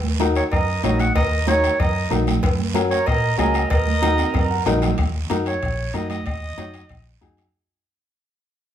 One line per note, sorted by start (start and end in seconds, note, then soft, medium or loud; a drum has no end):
0.00 0.40 D#2 loud
0.00 high conga medium
0.20 0.42 D#4 medium
0.20 0.43 F#4 medium
0.20 0.43 A#4 medium
0.20 bombo rim medium
0.20 high conga loud
0.20 short guiro medium
0.36 0.43 A#4 medium
0.36 0.43 C#5 medium
0.36 bombo rim medium
0.36 short guiro medium
0.51 0.78 F#2 medium
0.51 0.82 A#4 medium
0.51 0.81 D#5 loud
0.51 bombo low medium
0.51 bombo rim medium
0.51 cowbell medium
0.51 high conga soft
0.51 long guiro medium
0.84 1.09 A#1 medium
0.84 1.06 D#4 medium
0.84 1.06 F#4 medium
0.84 0.99 A#4 medium
0.84 1.06 C#5 medium
0.84 1.01 D#5 medium
0.84 bombo rim medium
0.84 high conga medium
0.84 low timbale medium
0.84 short guiro medium
0.99 1.15 D#5 medium
0.99 1.15 F#5 loud
0.99 bombo rim medium
0.99 high conga medium
0.99 short guiro medium
1.15 1.67 D#2 loud
1.15 1.45 A#4 medium
1.15 1.45 D#5 loud
1.15 bombo low medium
1.15 bombo rim medium
1.15 cowbell loud
1.15 high conga soft
1.15 long guiro medium
1.47 1.70 D#4 medium
1.47 1.70 F#4 medium
1.47 1.78 A#4 medium
1.47 1.81 C#5 loud
1.47 1.70 C#5 medium
1.47 bombo rim medium
1.47 high conga medium
1.47 short guiro medium
1.64 bombo rim medium
1.64 short guiro medium
1.80 2.05 F#2 medium
1.80 2.12 A#4 medium
1.80 2.11 D#5 medium
1.80 bombo low medium
1.80 bombo rim medium
1.80 cowbell medium
1.80 high conga soft
1.80 long guiro medium
2.11 2.37 A#1 medium
2.11 2.33 D#4 medium
2.11 2.33 F#4 medium
2.11 2.33 A#4 medium
2.11 bombo rim medium
2.11 high conga medium
2.11 low conga medium
2.11 low timbale medium
2.11 short guiro medium
2.27 bombo rim medium
2.27 high conga medium
2.27 low conga medium
2.27 short guiro medium
2.43 2.94 F#2 loud
2.43 bombo low medium
2.43 bombo rim medium
2.43 cowbell loud
2.43 high conga soft
2.43 long guiro medium
2.59 high conga medium
2.74 2.97 C#4 medium
2.74 2.97 F#4 medium
2.74 2.97 A#4 medium
2.74 bombo rim medium
2.74 high conga medium
2.74 short guiro medium
2.90 3.06 A#4 medium
2.90 3.08 C#5 loud
2.90 bombo rim medium
2.90 short guiro medium
3.06 3.33 A#2 medium
3.06 3.39 A#4 loud
3.06 3.38 D#5 loud
3.06 bombo low medium
3.06 bombo rim medium
3.06 cowbell medium
3.06 high conga soft
3.06 long guiro medium
3.38 3.64 C#2 medium
3.38 3.60 C#4 medium
3.38 3.61 F#4 medium
3.38 3.61 G#4 medium
3.38 3.70 A#4 medium
3.38 3.68 D#5 medium
3.38 bombo rim medium
3.38 high conga medium
3.38 low timbale medium
3.38 short guiro medium
3.54 bombo rim medium
3.54 short guiro medium
3.70 4.22 D#2 loud
3.70 4.63 A#4 medium
3.70 4.62 D#5 loud
3.70 bombo low medium
3.70 bombo rim medium
3.70 cowbell loud
3.70 high conga soft
3.70 long guiro medium
3.87 high conga medium
4.02 4.25 D#4 medium
4.02 4.25 F#4 medium
4.02 4.25 A#4 medium
4.02 bombo rim medium
4.02 high conga loud
4.02 short guiro medium
4.18 bombo rim medium
4.18 high timbale medium
4.18 short guiro medium
4.34 4.60 F#2 medium
4.34 bombo low medium
4.34 bombo rim medium
4.34 cowbell medium
4.34 high conga soft
4.34 high timbale medium
4.34 long guiro medium
4.51 4.65 F#5 medium
4.66 4.92 A#1 medium
4.66 4.88 D#4 medium
4.66 4.89 F#4 medium
4.66 4.89 A#4 medium
4.66 4.96 D#5 medium
4.66 bombo rim medium
4.66 high conga medium
4.66 low conga medium
4.66 low timbale loud
4.66 short guiro medium
4.82 bombo rim medium
4.82 high conga medium
4.82 low conga medium
4.82 low timbale medium
4.82 short guiro medium
4.98 5.24 D#2 medium
4.98 bombo low medium
4.98 bombo rim medium
4.98 high conga soft
4.98 high timbale medium
4.98 long guiro medium
5.30 5.56 F#2 medium
5.30 5.52 D#4 medium
5.30 5.53 F#4 medium
5.30 5.53 A#4 medium
5.30 bombo rim medium
5.30 high conga medium
5.30 high timbale medium
5.30 short guiro medium
5.46 5.96 C#5 medium
5.46 bombo rim medium
5.46 high timbale medium
5.46 short guiro medium
5.62 5.88 A#1 loud
5.62 bombo low medium
5.62 bombo rim medium
5.62 high conga soft
5.62 high timbale medium
5.62 long guiro medium
5.93 6.20 F#2 loud
5.93 6.16 D#4 medium
5.93 6.16 F#4 medium
5.93 6.17 A#4 medium
5.93 6.09 D#5 medium
5.93 bombo rim medium
5.93 high conga medium
5.93 high timbale medium
5.93 short guiro medium
6.10 6.25 D#5 loud
6.10 bombo rim medium
6.10 high conga medium
6.10 high timbale medium
6.10 short guiro medium
6.26 6.52 D#2 medium
6.26 7.18 D#5 loud
6.26 bombo low medium
6.26 bombo rim medium
6.26 high conga soft
6.26 high timbale medium
6.26 long guiro medium
6.58 6.83 F#2 medium
6.58 6.80 D#4 medium
6.58 6.80 F#4 medium
6.58 6.80 C#5 medium
6.58 bombo rim medium
6.58 high conga medium
6.58 high timbale medium
6.58 short guiro medium
6.74 bombo rim medium
6.74 high timbale medium
6.74 short guiro medium
6.89 7.16 A#1 medium
6.89 bombo low medium
6.89 bombo rim medium
6.89 high conga soft
6.89 high timbale medium
6.89 long guiro medium
7.21 7.48 F#2 medium
7.21 7.44 D#4 medium
7.21 7.44 F#4 medium
7.21 7.44 G#4 medium
7.21 bombo low medium
7.21 bombo rim medium
7.21 high conga medium
7.21 high timbale medium
7.21 short guiro medium
7.37 bombo rim medium
7.37 high timbale medium
7.37 short guiro medium